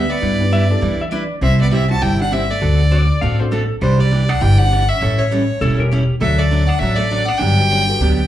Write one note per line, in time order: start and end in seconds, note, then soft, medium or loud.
0.00 0.10 D2 medium
0.00 0.10 B3 medium
0.00 0.12 E5 medium
0.10 1.01 B3 medium
0.10 1.00 D5 medium
0.21 0.70 G2 medium
0.21 0.42 G3 medium
0.21 0.42 D4 medium
0.21 0.42 E4 medium
0.21 0.42 B4 medium
0.40 0.68 B3 medium
0.40 0.68 D4 medium
0.40 0.68 E4 medium
0.40 0.69 G4 medium
0.40 0.69 B4 medium
0.51 0.63 G3 medium
0.51 0.63 D4 medium
0.51 0.63 E4 medium
0.51 0.63 B4 medium
0.51 0.70 E5 loud
0.70 0.81 B3 medium
0.70 0.81 D4 medium
0.70 0.81 E4 medium
0.70 0.81 G4 medium
0.70 0.81 A4 medium
0.70 1.00 D5 medium
0.81 1.30 E3 medium
0.81 1.01 G3 medium
0.81 1.02 D4 medium
0.81 1.02 E4 medium
0.81 1.02 B4 medium
1.01 1.12 E5 medium
1.11 1.22 G3 medium
1.11 1.23 D4 medium
1.11 1.23 E4 medium
1.11 1.23 B4 medium
1.11 1.35 D5 medium
1.41 1.89 C2 medium
1.41 1.62 C3 soft
1.41 1.62 G3 medium
1.41 1.62 C4 medium
1.41 1.59 C4 medium
1.41 1.62 E4 medium
1.41 1.62 G4 medium
1.41 1.59 E5 loud
1.61 1.72 B3 medium
1.61 1.72 D5 medium
1.71 1.83 C3 medium
1.71 1.83 G3 medium
1.71 1.83 C4 medium
1.71 1.89 C4 medium
1.71 1.83 E4 medium
1.71 1.83 G4 medium
1.71 1.89 E5 medium
1.89 2.00 G3 medium
1.89 2.00 C4 medium
1.89 2.00 E4 medium
1.89 2.02 F#4 medium
1.89 2.01 G4 medium
1.89 2.01 C5 medium
1.89 2.04 A5 medium
2.01 2.49 G1 medium
2.01 2.21 C3 medium
2.01 2.21 G3 medium
2.01 2.22 C4 medium
2.01 2.22 E4 medium
2.01 2.20 E4 medium
2.01 2.22 G4 medium
2.01 2.20 G5 loud
2.22 2.33 D4 medium
2.22 2.34 F#5 medium
2.31 2.42 C3 medium
2.31 2.42 G3 medium
2.31 2.43 C4 medium
2.31 2.51 C4 medium
2.31 2.43 E4 medium
2.31 2.43 G4 medium
2.31 2.52 E5 medium
2.51 3.40 A3 medium
2.51 3.40 D5 medium
2.61 3.09 D2 medium
2.61 2.81 D3 soft
2.61 2.81 A3 medium
2.61 2.81 C4 medium
2.61 2.81 F#4 medium
2.61 2.82 A4 medium
2.91 3.02 D3 medium
2.91 3.02 A3 medium
2.91 3.03 C4 medium
2.91 3.03 F#4 medium
2.91 3.03 A4 medium
2.91 3.21 D5 medium
3.21 3.70 A1 medium
3.21 3.41 D3 medium
3.21 3.42 A3 medium
3.21 3.42 C4 medium
3.21 3.42 F#4 medium
3.21 3.42 A4 medium
3.21 3.39 F5 medium
3.40 3.50 A3 medium
3.40 3.50 C4 medium
3.40 3.50 D4 medium
3.40 3.50 F#4 medium
3.40 3.50 A4 medium
3.40 3.51 C5 medium
3.51 3.62 D3 medium
3.51 3.63 A3 medium
3.51 3.63 C4 medium
3.51 3.63 F#4 medium
3.51 3.75 A4 medium
3.51 3.63 A4 medium
3.81 4.29 C2 medium
3.81 4.01 C3 soft
3.81 4.01 E3 medium
3.81 3.98 G3 medium
3.81 4.02 D4 medium
3.81 4.02 G4 medium
3.81 4.02 C5 medium
3.99 4.29 G3 medium
3.99 4.31 D5 medium
4.11 4.22 C3 medium
4.11 4.22 E3 medium
4.11 4.22 D4 medium
4.11 4.23 G4 medium
4.29 4.41 D4 medium
4.29 4.43 F#5 medium
4.41 4.89 G1 medium
4.41 4.61 C3 medium
4.41 4.61 E3 medium
4.41 4.61 D4 medium
4.41 4.59 E4 medium
4.41 4.61 G4 medium
4.41 4.60 G5 loud
4.59 4.70 G3 medium
4.59 4.70 C4 medium
4.59 4.88 D4 medium
4.59 4.70 D4 medium
4.59 4.70 E4 medium
4.59 4.70 G4 medium
4.59 4.90 F#5 loud
4.71 4.82 C3 medium
4.71 4.82 E3 medium
4.71 4.83 D4 medium
4.71 4.83 G4 medium
4.88 5.19 C#4 medium
4.88 5.20 E5 loud
5.01 5.49 A1 loud
5.01 5.21 E3 medium
5.01 5.21 G3 medium
5.01 5.21 C#4 medium
5.01 5.21 E4 medium
5.01 5.22 A4 medium
5.18 5.79 A3 medium
5.18 5.78 C#5 medium
5.31 5.42 E3 medium
5.31 5.42 G3 medium
5.31 5.42 C#4 medium
5.31 5.42 E4 medium
5.31 5.43 A4 medium
5.61 6.09 E1 medium
5.61 5.81 E3 medium
5.61 5.81 G3 medium
5.61 5.81 C#4 medium
5.61 5.81 E4 medium
5.61 5.79 A4 medium
5.61 5.81 A4 medium
5.79 5.90 G3 medium
5.79 5.90 A3 medium
5.79 5.90 C#4 medium
5.79 5.90 E4 medium
5.79 5.90 G4 medium
5.79 5.91 A#4 medium
5.91 6.02 E3 medium
5.91 6.02 G3 medium
5.91 6.03 C#4 medium
5.91 6.03 E4 medium
5.91 6.15 G4 medium
5.91 6.03 A4 medium
6.21 6.69 D2 loud
6.21 6.41 D3 medium
6.21 6.37 F#3 medium
6.21 6.41 F#3 medium
6.21 6.38 A3 medium
6.21 6.41 A3 medium
6.21 6.38 D4 medium
6.21 6.41 D4 medium
6.21 6.38 F#4 medium
6.21 6.41 F#4 medium
6.21 6.38 A4 medium
6.21 6.41 E5 medium
6.39 6.69 A3 medium
6.39 6.69 D5 medium
6.51 6.62 D3 medium
6.51 6.62 F#3 medium
6.51 6.62 A3 medium
6.51 6.62 D4 medium
6.51 6.62 F#4 medium
6.68 6.79 D4 medium
6.68 6.80 F#5 medium
6.79 7.28 A1 medium
6.79 7.01 D3 medium
6.79 7.01 F#3 medium
6.79 6.96 A3 medium
6.79 7.01 A3 medium
6.79 7.01 D4 medium
6.79 7.01 F#4 medium
6.79 6.98 E5 loud
6.97 7.28 A3 medium
6.97 7.28 D5 medium
7.11 7.22 D3 medium
7.11 7.22 F#3 medium
7.11 7.22 A3 medium
7.11 7.22 D4 medium
7.11 7.22 F#4 medium
7.26 7.38 D4 medium
7.26 7.39 F#5 loud
7.38 7.88 G1 loud
7.38 7.60 D3 soft
7.38 7.61 F#3 medium
7.38 7.61 B3 medium
7.38 8.27 D4 medium
7.38 7.61 D4 medium
7.38 8.27 G5 loud
7.42 7.61 G4 medium
7.58 7.87 G3 medium
7.58 7.87 B3 medium
7.58 7.87 D4 medium
7.58 7.87 F#4 medium
7.58 7.87 G4 medium
7.70 7.81 D3 medium
7.70 7.81 F#3 medium
7.70 7.82 B3 medium
7.70 7.82 D4 medium
7.70 7.82 G4 medium
7.89 7.99 G3 medium
7.89 7.99 B3 medium
7.89 7.99 D4 medium
7.89 7.99 F#4 medium
7.89 7.99 A4 medium
8.00 8.27 D2 medium
8.00 8.20 D3 medium
8.00 8.20 F#3 medium
8.00 8.21 B3 medium
8.00 8.21 D4 medium
8.00 8.21 G4 medium